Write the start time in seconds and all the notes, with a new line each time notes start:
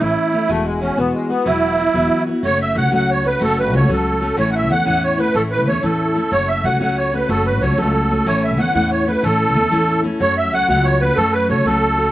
0.00 A1 A2 E3 A3 C#4 E4
0.32 A3 C#4 E4
0.49 E1 E3 G#3 A3 B3 F#4
0.65 G#3
0.81 E3 G#3 B3 C#4 F#4
0.97 E1 E3 G#3 B3 F#4
1.13 G#3
1.29 G#3 B3 F#4
1.45 E1 E3 F#3 B3 E4 F#4
1.78 F#3 B3 E4 F#4
1.94 E1 E3 F#3 B3 E4 F#4
2.27 B3 E4 F#4
2.43 F#1 F#3 A3 C#4 F#4 C#5
2.61 E5
2.75 C#2 F#3 A3 C#4 F#4 F#5
2.92 C#2 F#3 A3 C#4 F#4 F#5
3.11 C#5
3.24 A3 C#4 F#4 B4
3.40 F#1 F#3 A3 C#4 F#4 A4
3.59 B4
3.72 C#2 F#3 A3 C#4 F#4 C#5
3.88 C#2 F#3 A3 C#4 F#4 A4
4.21 A3 C#4 F#4
4.37 A1 A2 E3 A3 C#4 E4 C#5
4.51 F#5
4.56 E5
4.69 E2 E3 A3 C#4 E4 F#5
4.86 E2 A2 E3 A3 C#4 E4 F#5
5.04 C#5
5.18 A3 C#4 E4 B4
5.35 A1 A2 E3 A3 C#4 E4 A4
5.51 B4
5.66 E2 E3 A3 C#4 E4 C#5
5.83 E2 A2 E3 A3 C#4 E4 A4
6.15 A3 C#4 E4
6.31 F#1 F#3 A3 C#4 F#4 C#5
6.48 E5
6.64 C#2 F#3 A3 C#4 F#4 F#5
6.80 C#2 F#3 A3 C#4 F#4 F#5
6.97 C#5
7.12 A3 C#4 F#4 B4
7.28 F#1 F#3 A3 C#4 F#4 A4
7.46 B4
7.61 C#2 F#3 A3 C#4 F#4 C#5
7.77 C#2 F#3 A3 C#4 F#4 A4
8.10 A3 C#4 F#4
8.26 A1 A2 E3 A3 C#4 E4 C#5
8.44 E5
8.58 E2 E3 A3 C#4 E4 F#5
8.74 E2 A2 E3 A3 C#4 E4 F#5
8.91 C#5
9.06 A3 C#4 E4 B4
9.23 A1 A2 E3 A3 C#4 E4 A4
9.55 E2 E3 A3 C#4 E4
9.71 E2 A2 E3 A3 C#4 E4
10.04 A3 C#4 E4
10.20 F#2 F#3 A3 C#4 F#4 C#5
10.37 E5
10.52 C#2 F#3 A3 C#4 F#4 F#5
10.68 C#2 F#3 A3 C#4 F#4 F#5
10.84 C#5
11.00 A3 C#4 F#4 B4
11.16 F#2 F#3 A3 C#4 F#4 A4
11.33 B4
11.49 C#2 F#3 A3 C#4 F#4 C#5
11.65 C#2 F#3 A3 C#4 F#4 A4
11.98 A3 C#4 F#4